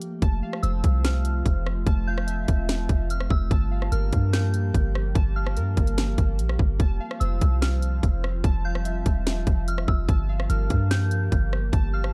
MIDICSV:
0, 0, Header, 1, 6, 480
1, 0, Start_track
1, 0, Tempo, 410959
1, 259, Time_signature, 4, 2, 24, 8
1, 14168, End_track
2, 0, Start_track
2, 0, Title_t, "Synth bell"
2, 0, Program_c, 0, 98
2, 731, Note_on_c, 0, 88, 91
2, 1186, Note_off_c, 0, 88, 0
2, 1221, Note_on_c, 0, 89, 84
2, 2133, Note_off_c, 0, 89, 0
2, 2423, Note_on_c, 0, 91, 78
2, 3574, Note_off_c, 0, 91, 0
2, 3628, Note_on_c, 0, 89, 83
2, 3852, Note_off_c, 0, 89, 0
2, 3859, Note_on_c, 0, 88, 80
2, 4087, Note_off_c, 0, 88, 0
2, 4577, Note_on_c, 0, 89, 89
2, 5029, Note_off_c, 0, 89, 0
2, 5057, Note_on_c, 0, 91, 84
2, 5971, Note_off_c, 0, 91, 0
2, 6261, Note_on_c, 0, 89, 82
2, 7413, Note_off_c, 0, 89, 0
2, 8411, Note_on_c, 0, 88, 91
2, 8866, Note_off_c, 0, 88, 0
2, 8897, Note_on_c, 0, 89, 83
2, 9811, Note_off_c, 0, 89, 0
2, 10101, Note_on_c, 0, 91, 81
2, 11254, Note_off_c, 0, 91, 0
2, 11309, Note_on_c, 0, 89, 85
2, 11533, Note_off_c, 0, 89, 0
2, 11539, Note_on_c, 0, 88, 81
2, 11767, Note_off_c, 0, 88, 0
2, 12259, Note_on_c, 0, 89, 89
2, 12711, Note_off_c, 0, 89, 0
2, 12739, Note_on_c, 0, 91, 89
2, 13653, Note_off_c, 0, 91, 0
2, 13940, Note_on_c, 0, 89, 81
2, 14168, Note_off_c, 0, 89, 0
2, 14168, End_track
3, 0, Start_track
3, 0, Title_t, "Synth keys"
3, 0, Program_c, 1, 88
3, 262, Note_on_c, 1, 81, 105
3, 499, Note_on_c, 1, 77, 90
3, 734, Note_on_c, 1, 72, 91
3, 1701, Note_off_c, 1, 81, 0
3, 1939, Note_off_c, 1, 77, 0
3, 2177, Note_off_c, 1, 72, 0
3, 2182, Note_on_c, 1, 81, 102
3, 2421, Note_on_c, 1, 77, 93
3, 2649, Note_on_c, 1, 76, 93
3, 3621, Note_off_c, 1, 81, 0
3, 3861, Note_off_c, 1, 77, 0
3, 4094, Note_off_c, 1, 76, 0
3, 4097, Note_on_c, 1, 81, 104
3, 4337, Note_on_c, 1, 77, 86
3, 4575, Note_on_c, 1, 70, 93
3, 5538, Note_off_c, 1, 81, 0
3, 5778, Note_off_c, 1, 77, 0
3, 6012, Note_on_c, 1, 81, 105
3, 6017, Note_off_c, 1, 70, 0
3, 6263, Note_on_c, 1, 77, 83
3, 6502, Note_on_c, 1, 70, 92
3, 7456, Note_off_c, 1, 81, 0
3, 7701, Note_off_c, 1, 77, 0
3, 7941, Note_off_c, 1, 70, 0
3, 7943, Note_on_c, 1, 81, 106
3, 8179, Note_on_c, 1, 77, 91
3, 8414, Note_on_c, 1, 72, 89
3, 9381, Note_off_c, 1, 81, 0
3, 9620, Note_off_c, 1, 77, 0
3, 9857, Note_off_c, 1, 72, 0
3, 9862, Note_on_c, 1, 81, 103
3, 10102, Note_on_c, 1, 77, 91
3, 10330, Note_on_c, 1, 76, 91
3, 11301, Note_off_c, 1, 81, 0
3, 11541, Note_off_c, 1, 77, 0
3, 11775, Note_off_c, 1, 76, 0
3, 11778, Note_on_c, 1, 81, 102
3, 12017, Note_on_c, 1, 77, 87
3, 12256, Note_on_c, 1, 70, 89
3, 13219, Note_off_c, 1, 81, 0
3, 13458, Note_off_c, 1, 77, 0
3, 13692, Note_on_c, 1, 81, 110
3, 13698, Note_off_c, 1, 70, 0
3, 13943, Note_on_c, 1, 77, 79
3, 14168, Note_off_c, 1, 77, 0
3, 14168, Note_off_c, 1, 81, 0
3, 14168, End_track
4, 0, Start_track
4, 0, Title_t, "Ambient pad"
4, 0, Program_c, 2, 92
4, 0, Note_on_c, 2, 53, 82
4, 0, Note_on_c, 2, 57, 75
4, 0, Note_on_c, 2, 58, 77
4, 0, Note_on_c, 2, 67, 90
4, 214, Note_off_c, 2, 57, 0
4, 220, Note_off_c, 2, 58, 0
4, 221, Note_off_c, 2, 53, 0
4, 221, Note_off_c, 2, 67, 0
4, 262, Note_on_c, 2, 53, 83
4, 262, Note_on_c, 2, 57, 72
4, 262, Note_on_c, 2, 60, 77
4, 262, Note_on_c, 2, 65, 91
4, 4062, Note_off_c, 2, 65, 0
4, 4063, Note_off_c, 2, 53, 0
4, 4063, Note_off_c, 2, 57, 0
4, 4063, Note_off_c, 2, 60, 0
4, 4101, Note_on_c, 2, 55, 71
4, 4102, Note_on_c, 2, 53, 83
4, 4102, Note_on_c, 2, 58, 76
4, 4103, Note_on_c, 2, 67, 88
4, 7902, Note_off_c, 2, 53, 0
4, 7903, Note_off_c, 2, 58, 0
4, 7903, Note_off_c, 2, 67, 0
4, 7940, Note_on_c, 2, 65, 87
4, 7941, Note_on_c, 2, 53, 81
4, 7941, Note_on_c, 2, 60, 71
4, 11742, Note_off_c, 2, 53, 0
4, 11742, Note_off_c, 2, 60, 0
4, 11742, Note_off_c, 2, 65, 0
4, 11780, Note_on_c, 2, 58, 74
4, 11780, Note_on_c, 2, 67, 91
4, 11781, Note_on_c, 2, 53, 82
4, 14168, Note_off_c, 2, 53, 0
4, 14168, Note_off_c, 2, 55, 0
4, 14168, Note_off_c, 2, 58, 0
4, 14168, Note_off_c, 2, 67, 0
4, 14168, End_track
5, 0, Start_track
5, 0, Title_t, "808-style bass"
5, 0, Program_c, 3, 38
5, 259, Note_on_c, 3, 29, 112
5, 490, Note_off_c, 3, 29, 0
5, 739, Note_on_c, 3, 29, 109
5, 970, Note_off_c, 3, 29, 0
5, 980, Note_on_c, 3, 36, 104
5, 1671, Note_off_c, 3, 36, 0
5, 1701, Note_on_c, 3, 29, 107
5, 2161, Note_off_c, 3, 29, 0
5, 2178, Note_on_c, 3, 29, 113
5, 2870, Note_off_c, 3, 29, 0
5, 2901, Note_on_c, 3, 28, 105
5, 3361, Note_off_c, 3, 28, 0
5, 3379, Note_on_c, 3, 29, 102
5, 3840, Note_off_c, 3, 29, 0
5, 3859, Note_on_c, 3, 29, 109
5, 4090, Note_off_c, 3, 29, 0
5, 4098, Note_on_c, 3, 31, 115
5, 4560, Note_off_c, 3, 31, 0
5, 4579, Note_on_c, 3, 31, 102
5, 4810, Note_off_c, 3, 31, 0
5, 4821, Note_on_c, 3, 43, 106
5, 5511, Note_off_c, 3, 43, 0
5, 5541, Note_on_c, 3, 31, 114
5, 6001, Note_off_c, 3, 31, 0
5, 6020, Note_on_c, 3, 31, 103
5, 6501, Note_on_c, 3, 43, 97
5, 6519, Note_off_c, 3, 31, 0
5, 6728, Note_off_c, 3, 43, 0
5, 6742, Note_on_c, 3, 31, 104
5, 7202, Note_off_c, 3, 31, 0
5, 7220, Note_on_c, 3, 31, 104
5, 7459, Note_on_c, 3, 34, 104
5, 7477, Note_off_c, 3, 31, 0
5, 7688, Note_off_c, 3, 34, 0
5, 7701, Note_on_c, 3, 31, 105
5, 7930, Note_off_c, 3, 31, 0
5, 7939, Note_on_c, 3, 29, 107
5, 8170, Note_off_c, 3, 29, 0
5, 8420, Note_on_c, 3, 29, 110
5, 8650, Note_off_c, 3, 29, 0
5, 8661, Note_on_c, 3, 36, 107
5, 9351, Note_off_c, 3, 36, 0
5, 9381, Note_on_c, 3, 29, 112
5, 9841, Note_off_c, 3, 29, 0
5, 9859, Note_on_c, 3, 29, 112
5, 10550, Note_off_c, 3, 29, 0
5, 10581, Note_on_c, 3, 28, 105
5, 11041, Note_off_c, 3, 28, 0
5, 11059, Note_on_c, 3, 29, 106
5, 11520, Note_off_c, 3, 29, 0
5, 11540, Note_on_c, 3, 29, 106
5, 11770, Note_off_c, 3, 29, 0
5, 11780, Note_on_c, 3, 31, 114
5, 12241, Note_off_c, 3, 31, 0
5, 12260, Note_on_c, 3, 31, 107
5, 12490, Note_off_c, 3, 31, 0
5, 12501, Note_on_c, 3, 43, 108
5, 13192, Note_off_c, 3, 43, 0
5, 13222, Note_on_c, 3, 31, 112
5, 13682, Note_off_c, 3, 31, 0
5, 13700, Note_on_c, 3, 31, 103
5, 14168, Note_off_c, 3, 31, 0
5, 14168, End_track
6, 0, Start_track
6, 0, Title_t, "Drums"
6, 18, Note_on_c, 9, 42, 70
6, 135, Note_off_c, 9, 42, 0
6, 258, Note_on_c, 9, 42, 66
6, 259, Note_on_c, 9, 36, 120
6, 375, Note_off_c, 9, 36, 0
6, 375, Note_off_c, 9, 42, 0
6, 622, Note_on_c, 9, 37, 98
6, 739, Note_off_c, 9, 37, 0
6, 740, Note_on_c, 9, 42, 76
6, 857, Note_off_c, 9, 42, 0
6, 979, Note_on_c, 9, 42, 78
6, 981, Note_on_c, 9, 36, 84
6, 1095, Note_off_c, 9, 42, 0
6, 1097, Note_off_c, 9, 36, 0
6, 1221, Note_on_c, 9, 42, 85
6, 1222, Note_on_c, 9, 38, 127
6, 1338, Note_off_c, 9, 42, 0
6, 1339, Note_off_c, 9, 38, 0
6, 1458, Note_on_c, 9, 42, 69
6, 1575, Note_off_c, 9, 42, 0
6, 1701, Note_on_c, 9, 36, 97
6, 1703, Note_on_c, 9, 42, 78
6, 1818, Note_off_c, 9, 36, 0
6, 1819, Note_off_c, 9, 42, 0
6, 1945, Note_on_c, 9, 37, 99
6, 2062, Note_off_c, 9, 37, 0
6, 2179, Note_on_c, 9, 36, 114
6, 2179, Note_on_c, 9, 42, 68
6, 2296, Note_off_c, 9, 36, 0
6, 2296, Note_off_c, 9, 42, 0
6, 2542, Note_on_c, 9, 37, 100
6, 2659, Note_off_c, 9, 37, 0
6, 2660, Note_on_c, 9, 42, 75
6, 2777, Note_off_c, 9, 42, 0
6, 2899, Note_on_c, 9, 42, 76
6, 2901, Note_on_c, 9, 36, 88
6, 3016, Note_off_c, 9, 42, 0
6, 3018, Note_off_c, 9, 36, 0
6, 3142, Note_on_c, 9, 42, 82
6, 3143, Note_on_c, 9, 38, 126
6, 3258, Note_off_c, 9, 42, 0
6, 3259, Note_off_c, 9, 38, 0
6, 3379, Note_on_c, 9, 36, 93
6, 3379, Note_on_c, 9, 42, 68
6, 3495, Note_off_c, 9, 42, 0
6, 3496, Note_off_c, 9, 36, 0
6, 3623, Note_on_c, 9, 42, 78
6, 3740, Note_off_c, 9, 42, 0
6, 3743, Note_on_c, 9, 37, 96
6, 3859, Note_on_c, 9, 36, 96
6, 3860, Note_off_c, 9, 37, 0
6, 3976, Note_off_c, 9, 36, 0
6, 4099, Note_on_c, 9, 36, 121
6, 4099, Note_on_c, 9, 42, 69
6, 4216, Note_off_c, 9, 36, 0
6, 4216, Note_off_c, 9, 42, 0
6, 4462, Note_on_c, 9, 37, 94
6, 4579, Note_off_c, 9, 37, 0
6, 4579, Note_on_c, 9, 42, 69
6, 4696, Note_off_c, 9, 42, 0
6, 4819, Note_on_c, 9, 42, 75
6, 4821, Note_on_c, 9, 36, 88
6, 4935, Note_off_c, 9, 42, 0
6, 4938, Note_off_c, 9, 36, 0
6, 5062, Note_on_c, 9, 42, 82
6, 5063, Note_on_c, 9, 38, 126
6, 5179, Note_off_c, 9, 42, 0
6, 5180, Note_off_c, 9, 38, 0
6, 5300, Note_on_c, 9, 42, 66
6, 5416, Note_off_c, 9, 42, 0
6, 5541, Note_on_c, 9, 36, 90
6, 5543, Note_on_c, 9, 42, 76
6, 5658, Note_off_c, 9, 36, 0
6, 5660, Note_off_c, 9, 42, 0
6, 5786, Note_on_c, 9, 37, 103
6, 5903, Note_off_c, 9, 37, 0
6, 6020, Note_on_c, 9, 36, 123
6, 6021, Note_on_c, 9, 42, 66
6, 6137, Note_off_c, 9, 36, 0
6, 6137, Note_off_c, 9, 42, 0
6, 6384, Note_on_c, 9, 37, 97
6, 6500, Note_off_c, 9, 37, 0
6, 6501, Note_on_c, 9, 42, 70
6, 6618, Note_off_c, 9, 42, 0
6, 6741, Note_on_c, 9, 42, 63
6, 6742, Note_on_c, 9, 36, 86
6, 6858, Note_off_c, 9, 42, 0
6, 6859, Note_off_c, 9, 36, 0
6, 6860, Note_on_c, 9, 42, 65
6, 6977, Note_off_c, 9, 42, 0
6, 6983, Note_on_c, 9, 42, 86
6, 6984, Note_on_c, 9, 38, 125
6, 7100, Note_off_c, 9, 42, 0
6, 7101, Note_off_c, 9, 38, 0
6, 7219, Note_on_c, 9, 42, 67
6, 7220, Note_on_c, 9, 36, 96
6, 7336, Note_off_c, 9, 36, 0
6, 7336, Note_off_c, 9, 42, 0
6, 7463, Note_on_c, 9, 42, 75
6, 7580, Note_off_c, 9, 42, 0
6, 7585, Note_on_c, 9, 37, 96
6, 7700, Note_on_c, 9, 36, 95
6, 7701, Note_off_c, 9, 37, 0
6, 7817, Note_off_c, 9, 36, 0
6, 7939, Note_on_c, 9, 36, 118
6, 7940, Note_on_c, 9, 42, 70
6, 8056, Note_off_c, 9, 36, 0
6, 8057, Note_off_c, 9, 42, 0
6, 8304, Note_on_c, 9, 37, 97
6, 8420, Note_on_c, 9, 42, 74
6, 8421, Note_off_c, 9, 37, 0
6, 8537, Note_off_c, 9, 42, 0
6, 8659, Note_on_c, 9, 42, 77
6, 8661, Note_on_c, 9, 36, 91
6, 8776, Note_off_c, 9, 42, 0
6, 8778, Note_off_c, 9, 36, 0
6, 8902, Note_on_c, 9, 42, 83
6, 8903, Note_on_c, 9, 38, 122
6, 9019, Note_off_c, 9, 42, 0
6, 9020, Note_off_c, 9, 38, 0
6, 9139, Note_on_c, 9, 42, 70
6, 9256, Note_off_c, 9, 42, 0
6, 9381, Note_on_c, 9, 36, 95
6, 9383, Note_on_c, 9, 42, 82
6, 9498, Note_off_c, 9, 36, 0
6, 9500, Note_off_c, 9, 42, 0
6, 9625, Note_on_c, 9, 37, 103
6, 9741, Note_off_c, 9, 37, 0
6, 9859, Note_on_c, 9, 36, 125
6, 9859, Note_on_c, 9, 42, 72
6, 9976, Note_off_c, 9, 36, 0
6, 9976, Note_off_c, 9, 42, 0
6, 10223, Note_on_c, 9, 37, 96
6, 10340, Note_off_c, 9, 37, 0
6, 10340, Note_on_c, 9, 42, 73
6, 10457, Note_off_c, 9, 42, 0
6, 10580, Note_on_c, 9, 42, 77
6, 10581, Note_on_c, 9, 36, 89
6, 10696, Note_off_c, 9, 42, 0
6, 10698, Note_off_c, 9, 36, 0
6, 10823, Note_on_c, 9, 42, 81
6, 10824, Note_on_c, 9, 38, 127
6, 10940, Note_off_c, 9, 42, 0
6, 10941, Note_off_c, 9, 38, 0
6, 11059, Note_on_c, 9, 36, 100
6, 11059, Note_on_c, 9, 42, 69
6, 11176, Note_off_c, 9, 36, 0
6, 11176, Note_off_c, 9, 42, 0
6, 11304, Note_on_c, 9, 42, 79
6, 11420, Note_off_c, 9, 42, 0
6, 11424, Note_on_c, 9, 37, 100
6, 11540, Note_off_c, 9, 37, 0
6, 11540, Note_on_c, 9, 36, 98
6, 11657, Note_off_c, 9, 36, 0
6, 11780, Note_on_c, 9, 36, 120
6, 11780, Note_on_c, 9, 42, 70
6, 11897, Note_off_c, 9, 36, 0
6, 11897, Note_off_c, 9, 42, 0
6, 12143, Note_on_c, 9, 37, 100
6, 12260, Note_off_c, 9, 37, 0
6, 12261, Note_on_c, 9, 42, 76
6, 12378, Note_off_c, 9, 42, 0
6, 12499, Note_on_c, 9, 42, 76
6, 12502, Note_on_c, 9, 36, 88
6, 12616, Note_off_c, 9, 42, 0
6, 12619, Note_off_c, 9, 36, 0
6, 12742, Note_on_c, 9, 42, 82
6, 12743, Note_on_c, 9, 38, 124
6, 12859, Note_off_c, 9, 42, 0
6, 12860, Note_off_c, 9, 38, 0
6, 12979, Note_on_c, 9, 42, 68
6, 13096, Note_off_c, 9, 42, 0
6, 13222, Note_on_c, 9, 36, 90
6, 13223, Note_on_c, 9, 42, 79
6, 13339, Note_off_c, 9, 36, 0
6, 13340, Note_off_c, 9, 42, 0
6, 13466, Note_on_c, 9, 37, 100
6, 13583, Note_off_c, 9, 37, 0
6, 13700, Note_on_c, 9, 36, 121
6, 13700, Note_on_c, 9, 42, 68
6, 13817, Note_off_c, 9, 36, 0
6, 13817, Note_off_c, 9, 42, 0
6, 14064, Note_on_c, 9, 37, 100
6, 14168, Note_off_c, 9, 37, 0
6, 14168, End_track
0, 0, End_of_file